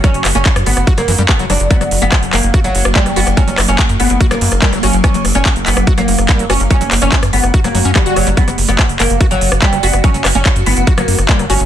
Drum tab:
HH |xxoxxxoxxxoxxxox|xxoxxxoxxxoxxxox|xxoxxxoxxxoxxxox|xxoxxxoxxxoxxxox|
CP |--x-x-------x---|----x-x-----x---|--x-x-------x---|----x-x-----x---|
SD |r-r--r-r-r--r-r-|-r--r-r-r--r-r-r|--r-r----r-r-r--|r-r-r--r-r-r--r-|
BD |o---o---o---o---|o---o---o---o---|o---o---o---o---|o---o---o---o---|

HH |xxoxxxoxxxoxxxox|xxoxxxoxxxoxxxox|xxoxxxoxxxoxxxox|
CP |--x-x-------x---|----x-x-----x---|--x-x-------x---|
SD |r-r--r-r-r--r-r-|-r--r-r-r--r-r-r|--r-r----r-r-r--|
BD |o---o---o---o---|o---o---o---o---|o---o---o---o---|